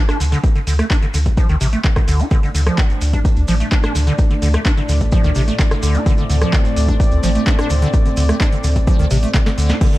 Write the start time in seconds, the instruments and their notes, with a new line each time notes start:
0.09 acid bass D4, cross-stick, closed hi-hat, shekere
0.20 analog synth bass D2, acid bass D3, open hi-hat, shekere
0.32 acid bass D3, closed hi-hat, shekere
0.44 kick, closed hi-hat, shekere
0.56 acid bass D3, closed hi-hat, shekere
0.67 analog synth bass D2, acid bass D3, open hi-hat, shekere
0.79 acid bass A3, cross-stick, closed hi-hat, shekere
0.90 acid bass D4, kick, clap, closed hi-hat, shekere
1.02 acid bass D3, closed hi-hat, shekere
1.14 analog synth bass D2, acid bass D3, open hi-hat, shekere
1.26 kick, closed hi-hat, shekere
1.37 acid bass F3, kick, closed hi-hat, shekere
1.49 analog synth bass D2, acid bass D#3, closed hi-hat, shekere
1.61 analog synth bass A1, acid bass C3, open hi-hat, shekere
1.72 acid bass A3, closed hi-hat, shekere
1.84 acid bass D3, kick, clap, closed hi-hat, shekere
1.96 acid bass D3, kick, cross-stick, closed hi-hat, shekere
2.08 analog synth bass D2, acid bass D3, open hi-hat, shekere
2.20 acid bass F4, closed hi-hat, shekere
2.31 analog synth pad A2 A3 D4 D5, acid bass D3, kick, closed hi-hat, shekere
2.43 acid bass D3, closed hi-hat, shekere
2.55 analog synth bass D2, acid bass D3, open hi-hat, shekere
2.66 acid bass F3, cross-stick, closed hi-hat, shekere
2.78 acid bass D3, kick, clap, closed hi-hat, shekere
2.90 closed hi-hat, shekere
3.01 analog synth bass D2, open hi-hat, shekere
3.13 acid bass D4, kick, closed hi-hat, shekere
3.25 kick, closed hi-hat, shekere
3.36 analog synth bass D2, closed hi-hat, shekere
3.48 analog synth bass A1, acid bass F3, open hi-hat, shekere
3.60 acid bass A3, closed hi-hat, shekere
3.71 acid bass D4, kick, clap, closed hi-hat, shekere
3.83 acid bass D4, cross-stick, closed hi-hat, shekere
3.95 analog synth bass D2, acid bass D3, open hi-hat, shekere
4.07 acid bass D3, closed hi-hat, shekere
4.18 kick, closed hi-hat, shekere
4.30 acid bass D3, closed hi-hat, shekere
4.42 analog synth bass D2, acid bass D3, open hi-hat, shekere
4.53 acid bass A3, cross-stick, closed hi-hat, shekere
4.65 acid bass D4, kick, clap, closed hi-hat, shekere
4.77 acid bass D3, closed hi-hat, shekere
4.89 analog synth bass D2, acid bass D3, open hi-hat, shekere
5.01 kick, closed hi-hat, shekere
5.12 acid bass F3, kick, closed hi-hat, shekere
5.24 analog synth bass D2, acid bass D#3, closed hi-hat, shekere
5.35 analog synth bass A1, acid bass C3, open hi-hat, shekere
5.48 acid bass A3, closed hi-hat, shekere
5.59 acid bass D3, kick, clap, closed hi-hat, shekere
5.71 acid bass D3, cross-stick, closed hi-hat, shekere
5.83 analog synth bass D2, acid bass D3, open hi-hat, shekere
5.95 acid bass F4, closed hi-hat, shekere
6.06 acid bass D3, analog synth pad C4, kick, closed hi-hat, shekere
6.17 acid bass D3, closed hi-hat, shekere
6.30 analog synth bass D2, acid bass D3, open hi-hat, shekere
6.41 acid bass F3, cross-stick, closed hi-hat, shekere
6.53 acid bass D3, kick, clap, closed hi-hat, shekere
6.65 closed hi-hat, shekere
6.76 analog synth bass D2, open hi-hat, shekere
6.88 acid bass D4, kick, closed hi-hat, shekere
7.00 kick, closed hi-hat, shekere
7.11 analog synth bass D2, closed hi-hat, shekere
7.23 analog synth bass A1, acid bass F3, open hi-hat, shekere
7.35 acid bass A3, closed hi-hat, shekere
7.47 acid bass D4, kick, clap, closed hi-hat, shekere
7.59 acid bass D4, cross-stick, closed hi-hat, shekere
7.70 analog synth bass D2, acid bass D3, open hi-hat, shekere
7.82 acid bass D3, closed hi-hat, shekere
7.93 kick, closed hi-hat, shekere
8.06 acid bass D3, closed hi-hat, shekere
8.17 analog synth bass D2, acid bass D3, open hi-hat, shekere
8.29 acid bass A3, cross-stick, closed hi-hat, shekere
8.40 acid bass D4, kick, clap, closed hi-hat, shekere
8.52 acid bass D3, closed hi-hat, shekere
8.64 analog synth bass D2, acid bass D3, open hi-hat, shekere
8.76 kick, closed hi-hat, shekere
8.87 acid bass F3, kick, closed hi-hat, shekere
8.99 analog synth bass D2, acid bass D#3, closed hi-hat, shekere
9.10 analog synth bass A1, acid bass C3, open hi-hat, shekere
9.23 acid bass A3, closed hi-hat, shekere
9.34 acid bass D3, kick, snare, clap, closed hi-hat, shekere
9.46 acid bass D3, snare, closed hi-hat, shekere
9.58 analog synth bass D2, acid bass D3, open hi-hat, shekere
9.69 acid bass F4, snare, closed hi-hat, shekere
9.81 analog synth pad A2 A3 D4 D5, acid bass D3, kick, closed hi-hat, crash
9.93 acid bass D3, closed hi-hat